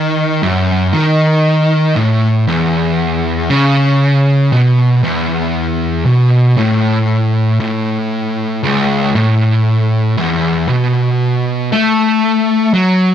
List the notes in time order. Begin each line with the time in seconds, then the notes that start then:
Already playing: D#3
0.43 F#2
0.93 D#3
1.96 A2
2.47 E2
3.50 C#3
4.52 B2
5.04 E2
6.06 B2
6.58 A2
7.60 A2
8.63 C#2
9.15 A2
10.17 E2
10.69 B2
11.72 A3
12.74 F#3